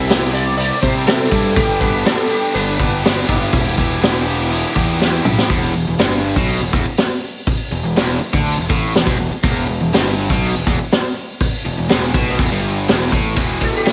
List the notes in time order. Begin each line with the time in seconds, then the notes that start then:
Already playing: C2 G4 E5
0.08 C3 G3 C4 E4 G4, snare, open hi-hat, tambourine
0.33 C4 E4 G4 D5, tambourine
0.57 C3 G3 C4 E4 G4 D5, open hi-hat
0.81 C3 C4 E4 G4 C5, kick, tambourine
1.06 G3 C4 E4 G4 A4, snare, open hi-hat, tambourine
1.30 G2 C4 E4 G4, kick, tambourine
1.56 G1 G3 B3 D4 G4, kick, open hi-hat, tambourine
1.80 G1 B3 D4 G4 B4, kick, tambourine
2.05 G3 B3 D4 G4 A4, snare, open hi-hat, tambourine
2.30 B3 D4 G4, tambourine
2.53 G1 G3 B3 D4 G4 B4, open hi-hat
2.78 G1 B3 D4 G4, kick, tambourine
3.04 G3 B3 D4 G4, snare, open hi-hat, tambourine
3.27 G1 B3 D4 E4 G4, kick, tambourine
3.52 E1 E3 B3 E4 G4, kick, open hi-hat, tambourine
3.77 E1 B3 E4 G4, kick, tambourine
4.01 E3 B3 E4 G4, snare, open hi-hat, tambourine
4.26 B3 E4 G4, tambourine
4.50 E3 B3 E4 G4, open hi-hat, tambourine
4.75 E2 B3 E4 G4, kick, tambourine
4.99 E3 B3 E4 G4, snare, tambourine
5.23 B1 B3 E4 G4, mid tom, tambourine
5.38 snare
5.50 E1 E2, kick, open hi-hat
5.75 E1 E2, tambourine
5.87 E1 E2
5.98 G1 G2, snare, open hi-hat, tambourine
6.24 tambourine
6.36 B1 B2, kick
6.49 open hi-hat, tambourine
6.61 E1 E2, tambourine
6.73 E1 E2, kick, tambourine
6.86 tambourine
6.97 snare, open hi-hat, tambourine
7.11 tambourine
7.35 tambourine
7.47 kick, open hi-hat
7.71 E1 E2, tambourine
7.84 E1 E2
7.96 E1 E2, snare, open hi-hat, tambourine
8.09 tambourine
8.21 muted distorted electric guitar stroke, muted picked electric bass stroke, tambourine
8.33 D2 D3, kick, tambourine
8.46 open hi-hat, tambourine
8.57 E1 E2, tambourine
8.69 A1 A2, kick, tambourine
8.83 tambourine
8.94 E1 E2, snare, open hi-hat, tambourine
9.06 E1 E2, kick
9.19 E1 E2
9.32 muted distorted electric guitar stroke, muted picked electric bass stroke, tambourine
9.43 E1 E2, kick, open hi-hat
9.68 E1 E2, tambourine
9.81 E1 E2
9.93 G1 G2, snare, open hi-hat, tambourine
10.18 tambourine
10.30 B1 B2, kick, tambourine
10.43 open hi-hat, tambourine
10.55 E1 E2, tambourine
10.67 E1 E2, kick, tambourine
10.91 snare, open hi-hat, tambourine
11.04 tambourine
11.29 tambourine
11.40 kick, open hi-hat, tambourine
11.53 tambourine
11.65 E1 E2, tambourine
11.78 E1 E2
11.89 E1 E2, snare, open hi-hat, tambourine
12.01 tambourine
12.13 B1 B2, kick, tambourine
12.27 snare, tambourine
12.38 E1 E2, kick, open hi-hat, tambourine
12.51 G1 G2, tambourine
12.63 tambourine
12.87 E1 E2, snare, open hi-hat, tambourine
12.99 tambourine
13.12 A1 A2, kick, tambourine
13.23 tambourine
13.35 E1 E2 B2 E3, kick, ride
13.61 A4, kick, ride
13.76 G4
13.85 E4, snare, ride